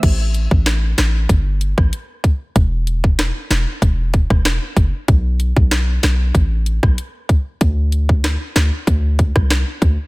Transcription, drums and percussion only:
0.03 kick loud
0.03 closed hi-hat medium
0.03 crash medium
0.34 closed hi-hat soft
0.51 kick medium
0.66 cross-stick medium
0.66 snare loud
0.66 closed hi-hat medium
0.98 cross-stick medium
0.98 snare loud
0.98 closed hi-hat medium
1.29 kick medium
1.29 closed hi-hat medium
1.61 closed hi-hat soft
1.78 kick loud
1.78 cross-stick medium
1.93 closed hi-hat medium
2.24 kick medium
2.24 closed hi-hat medium
2.56 kick loud
2.56 closed hi-hat medium
2.87 closed hi-hat soft
3.04 kick medium
3.19 cross-stick medium
3.19 snare loud
3.19 closed hi-hat medium
3.51 cross-stick medium
3.51 snare loud
3.51 closed hi-hat medium
3.82 kick medium
3.82 closed hi-hat medium
4.14 kick medium
4.14 closed hi-hat medium
4.30 kick loud
4.30 cross-stick medium
4.45 cross-stick loud
4.45 snare loud
4.45 closed hi-hat medium
4.77 kick medium
4.77 closed hi-hat medium
5.08 kick loud
5.08 closed hi-hat medium
5.40 closed hi-hat soft
5.57 kick medium
5.71 cross-stick medium
5.71 snare loud
5.71 closed hi-hat medium
6.03 cross-stick medium
6.03 snare loud
6.03 closed hi-hat medium
6.35 kick medium
6.35 closed hi-hat medium
6.66 closed hi-hat soft
6.83 kick loud
6.83 cross-stick medium
6.98 closed hi-hat medium
7.29 kick medium
7.29 closed hi-hat medium
7.61 kick loud
7.61 closed hi-hat medium
7.92 closed hi-hat soft
8.09 kick medium
8.24 cross-stick medium
8.24 snare loud
8.24 closed hi-hat medium
8.56 cross-stick medium
8.56 snare loud
8.56 closed hi-hat medium
8.87 kick medium
8.87 closed hi-hat medium
9.19 kick medium
9.19 closed hi-hat soft
9.36 kick loud
9.36 cross-stick medium
9.50 cross-stick medium
9.50 snare loud
9.50 closed hi-hat medium
9.82 kick medium
9.82 closed hi-hat medium

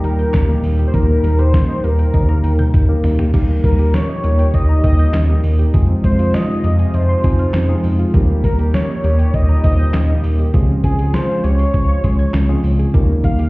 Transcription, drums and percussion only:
0.04 closed hi-hat medium
0.19 closed hi-hat soft
0.34 kick loud
0.34 snare loud
0.34 clap medium
0.34 closed hi-hat medium
0.64 open hi-hat medium
0.79 closed hi-hat medium
0.94 kick loud
0.94 closed hi-hat medium
1.24 closed hi-hat medium
1.39 closed hi-hat medium
1.54 kick loud
1.54 snare loud
1.54 closed hi-hat medium
1.84 closed hi-hat medium
1.99 closed hi-hat medium
2.14 kick loud
2.14 closed hi-hat medium
2.14 high tom medium
2.29 high tom medium
2.44 closed hi-hat medium
2.59 closed hi-hat soft
2.59 mid tom medium
2.74 kick loud
2.74 closed hi-hat medium
2.74 mid tom medium
3.04 floor tom loud
3.04 open hi-hat medium
3.19 closed hi-hat medium
3.19 floor tom medium
3.34 kick loud
3.34 closed hi-hat medium
3.34 crash loud
3.64 kick medium
3.64 closed hi-hat medium
3.79 closed hi-hat medium
3.94 snare loud
3.94 closed hi-hat medium
4.24 closed hi-hat medium
4.39 closed hi-hat medium
4.54 kick medium
4.54 closed hi-hat medium
4.84 kick loud
4.84 closed hi-hat medium
4.99 closed hi-hat soft
5.14 snare loud
5.14 clap medium
5.14 closed hi-hat medium
5.44 open hi-hat medium
5.59 closed hi-hat medium
5.74 kick loud
5.74 closed hi-hat medium
6.04 kick medium
6.04 closed hi-hat medium
6.19 closed hi-hat medium
6.34 snare loud
6.34 closed hi-hat medium
6.64 closed hi-hat medium
6.79 closed hi-hat medium
6.94 closed hi-hat medium
7.24 kick loud
7.24 closed hi-hat medium
7.39 closed hi-hat soft
7.54 snare loud
7.54 clap medium
7.54 closed hi-hat medium
7.84 open hi-hat medium
7.99 closed hi-hat medium
8.14 kick loud
8.14 closed hi-hat medium
8.44 kick medium
8.44 closed hi-hat medium
8.59 closed hi-hat medium
8.74 snare loud
8.74 closed hi-hat medium
9.04 closed hi-hat medium
9.19 closed hi-hat medium
9.34 kick medium
9.34 closed hi-hat medium
9.64 kick loud
9.64 closed hi-hat medium
9.79 closed hi-hat soft
9.94 snare loud
9.94 clap medium
9.94 closed hi-hat medium
10.24 open hi-hat medium
10.39 closed hi-hat medium
10.54 kick loud
10.54 closed hi-hat medium
10.84 kick medium
10.84 closed hi-hat medium
10.99 closed hi-hat medium
11.14 snare loud
11.14 closed hi-hat medium
11.44 closed hi-hat medium
11.59 closed hi-hat medium
11.74 kick medium
11.74 closed hi-hat medium
12.04 kick loud
12.04 closed hi-hat medium
12.19 closed hi-hat soft
12.34 snare loud
12.34 clap medium
12.34 closed hi-hat medium
12.64 open hi-hat medium
12.79 closed hi-hat medium
12.94 kick loud
12.94 closed hi-hat medium
13.24 kick medium
13.24 closed hi-hat medium
13.39 closed hi-hat medium

